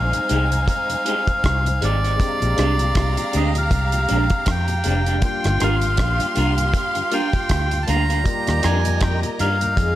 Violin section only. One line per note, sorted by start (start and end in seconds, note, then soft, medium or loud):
0.00 2.15 D#4 medium
0.00 2.15 C5 medium
0.00 2.15 G#5 loud
2.19 5.19 G4 medium
2.19 5.19 F5 loud
2.19 5.19 A#5 loud
5.22 8.22 G4 medium
5.22 8.22 F5 medium
5.22 8.22 C6 loud
8.26 9.75 A#4 medium
8.26 9.75 D#5 medium
8.26 9.75 A#5 loud
9.78 9.95 F4 medium
9.78 9.95 D#5 medium
9.78 9.95 G#5 loud